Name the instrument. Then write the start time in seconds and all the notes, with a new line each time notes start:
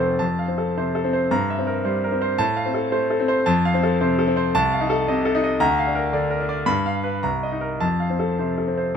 grand piano
Already playing: F1 F2 C3 C4 A4 F5 A5
0.00 C5
0.19 F2 A5
0.39 F5
0.48 C4
0.58 A4
0.77 C3 C5
0.95 A4
1.04 C4
1.13 C5
1.31 G2 A#5
1.50 E5
1.59 C4
1.67 A#4
1.85 G3 C5
2.04 A#4
2.12 C4
2.22 C5
2.38 A2 A5
2.57 F5
2.66 C4
2.74 A4
2.92 A3 C5
3.10 A4
3.20 C4
3.28 C5
3.46 F2 A5
3.65 F5
3.74 C4
3.83 A4
4.01 C3 C5
4.19 A4
4.27 C4
4.37 C5
4.55 C2 A5
4.72 F5
4.81 D#4
4.90 A4
5.08 C3 D#5
5.25 A4
5.35 D#4
5.44 D#5
5.60 D2 A#5
5.79 F5
5.87 D4
5.95 A#4
6.13 D3 D5
6.30 A#4
6.40 D4
6.49 D5
6.66 G2 B5
6.86 F5
7.04 B4
7.23 C2 A#5
7.43 D#5
7.52 D#4
7.61 A#4
7.80 F2 A5
8.00 F5
8.10 C4
8.19 A4
8.39 C3 C5
8.58 A4
8.67 C4
8.78 C5